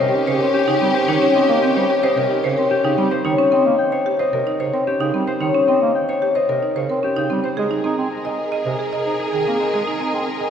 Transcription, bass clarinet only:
0.01 C3
0.28 C#3
0.41 C4
0.68 C#3
0.81 G3
1.08 D#3
1.35 C4
1.49 A#3
1.76 G3
2.16 C3
2.44 C#3
2.58 C4
2.84 C#3
2.97 G3
3.25 D#3
3.52 C4
3.66 A#3
4.33 C3
4.60 C#3
4.73 C4
5.00 C#3
5.14 G3
5.41 D#3
5.68 C4
5.82 A#3
6.49 C3
6.76 C#3
6.90 C4
7.17 C#3
7.31 G3
7.58 G#3
7.85 D#4
7.98 C4
8.66 C3
9.06 D#4
9.33 D#3
9.47 A#3
9.74 G#3
10.00 D#4
10.14 C4

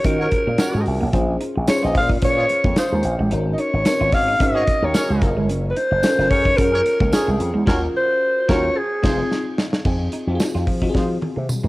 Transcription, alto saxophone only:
0.06 A#4
1.69 C#5
1.84 D#5
1.97 F5
2.25 C#5
2.78 C5
3.53 D#5
3.59 C#5
4.14 F5
4.42 D#5
4.85 C#5
5.70 B4
5.77 C5
6.30 C#5
6.57 A#4
7.13 G#4
7.97 C5
8.51 C#5
8.77 G#4

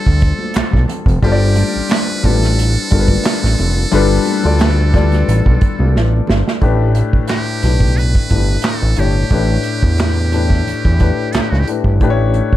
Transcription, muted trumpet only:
Already playing: A4
1.24 G4
1.92 B4
2.26 A4
7.30 G4
7.97 B4
8.65 A4
8.99 G4
11.32 A4
11.41 G4
11.50 F#4
11.60 G4

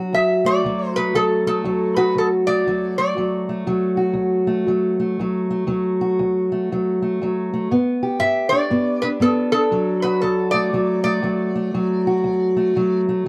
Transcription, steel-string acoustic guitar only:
Already playing: F#3 F#4
0.13 D2
0.45 A3
0.64 D2 F#3
0.97 A3
1.14 D2 F#3
1.47 A3
1.64 D2 F#3
1.97 F#4
2.15 D2
2.48 A3
2.67 D2 F#3
2.98 A3
3.17 D2 F#3
3.49 A3
3.67 D2 F#3
3.97 F#4
4.13 D2
4.47 A3
4.67 D2 F#3
5.00 A3
5.19 D2 F#3
5.50 A3
5.67 D2 F#3
6.01 F#4
6.19 D2
6.52 A3
6.72 D2 F#3
7.02 A3
7.22 D2 F#3
7.54 A3
7.71 G2 B3
8.03 G4
8.19 G2
8.52 D4
8.70 G2 B3
9.03 D4
9.20 G2 B3
9.52 D4
9.72 D2 F#3
10.04 F#4
10.22 D2
10.54 A3
10.73 D2 F#3
11.04 A3
11.22 D2 F#3
11.55 A3
11.74 D2 F#3
12.07 F#4
12.24 D2
12.57 A3
12.76 D2 F#3
13.09 A3

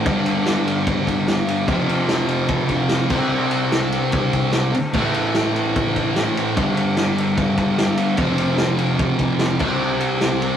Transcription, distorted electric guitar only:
0.05 G2 D3
0.09 G3
1.68 F2 C3
1.73 F3
3.11 C3 G3
3.16 C4
4.94 A2 E3
4.98 A3
6.56 G2 D3 G3
8.18 F2 C3
8.23 F3
9.60 C3 G3
9.65 C4

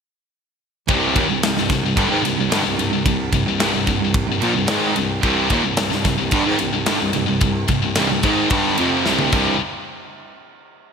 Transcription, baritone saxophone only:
0.88 C2
1.16 D#2
1.28 C2
1.44 C2
1.57 C2
1.70 C2
1.85 C2
1.97 G2
2.11 G#2
2.25 C2
2.38 C2
2.52 G2
2.66 C2
2.80 C2
2.94 C2
3.06 C2
3.32 C2
3.45 C2
3.59 C2
3.73 C2
3.87 C2
4.00 C2
4.28 C2
4.41 A#2
4.55 C2
4.69 G#2
4.96 C2
5.23 C2
5.50 D#2
5.64 C2
5.79 C2
5.91 C2
6.05 C2
6.18 C2
6.33 G2
6.46 G#2
6.59 C2
6.73 C2
6.88 G2
7.00 C2
7.14 C2
7.27 C2
7.42 C2
7.83 C2
7.96 C2
8.09 C2
8.23 G#2
8.51 G2
8.79 F2
9.05 C2
9.33 C2

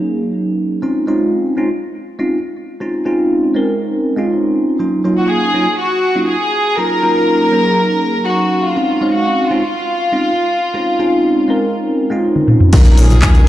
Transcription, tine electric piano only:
Already playing: F#3 A#3 C#4 D#4 G#4
0.82 G#3 C4 C#4 D#4 F4
1.07 G#3 C4 C#4 D#4 F4
1.57 G#3 C4 C#4 D#4 F4
2.19 G#3 C4 C#4 D#4 F4
2.80 G#3 C4 C#4 D#4 F4
3.05 G#3 C4 C#4 D#4 F4
3.54 G#3 C4 C#4 D#4 A#4
4.17 G#3 C4 C#4 D#4 F4
4.79 F#3 A#3 C#4 D#4 F4
5.04 F#3 A#3 C#4 D#4 F4
5.54 F#3 A#3 C#4 D#4 F4
6.15 F#3 A#3 C#4 D#4 F4
6.77 F#3 A#3 C#4 D#4 F4
7.02 F#3 A#3 C#4 D#4 F4
7.51 F#3 A#3 C#4 D#4 G#4
8.76 G#3 C4 C#4 D#4 F4
9.01 G#3 C4 C#4 D#4 F5
9.50 G#3 C4 C#4 D#4 F4
10.12 G#3 C4 C#4 D#4 F4
10.74 G#3 C4 C#4 D#4 F4
10.99 G#3 C4 C#4 D#4 F4
11.48 G#3 C4 C#4 D#4 A#4
12.10 G#3 C4 C#4 D#4 F4
12.72 F#3 C#4 D#4 F4 A#4
12.97 F#3 C#4 D#4 F4 A#4

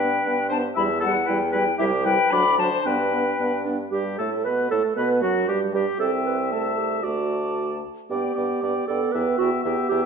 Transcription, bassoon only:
Already playing: G2
0.26 G2
0.77 E2
1.29 E2
1.80 C2
2.32 D2
2.86 G2
3.40 G2
3.93 G2
4.20 A2
4.46 B2
4.72 A2
4.97 B2
5.23 F#2
5.49 G2
5.75 G2
6.00 C2
7.05 D2
8.10 G2
8.37 G2
8.63 G2
8.90 G2
9.15 E2
9.40 E2
9.65 E2
9.91 E2

